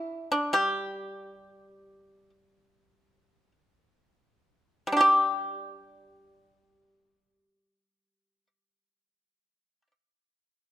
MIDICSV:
0, 0, Header, 1, 2, 480
1, 0, Start_track
1, 0, Tempo, 500000
1, 10287, End_track
2, 0, Start_track
2, 0, Title_t, "Pipa"
2, 0, Program_c, 0, 105
2, 0, Note_on_c, 0, 64, 57
2, 287, Note_off_c, 0, 64, 0
2, 303, Note_on_c, 0, 62, 54
2, 496, Note_off_c, 0, 62, 0
2, 509, Note_on_c, 0, 55, 43
2, 515, Note_on_c, 0, 67, 57
2, 2204, Note_off_c, 0, 67, 0
2, 3374, Note_off_c, 0, 55, 0
2, 4676, Note_on_c, 0, 55, 29
2, 4727, Note_on_c, 0, 62, 31
2, 4768, Note_on_c, 0, 67, 30
2, 4805, Note_off_c, 0, 67, 0
2, 4805, Note_on_c, 0, 67, 49
2, 9423, Note_off_c, 0, 55, 0
2, 9473, Note_off_c, 0, 62, 0
2, 9514, Note_off_c, 0, 67, 0
2, 10287, End_track
0, 0, End_of_file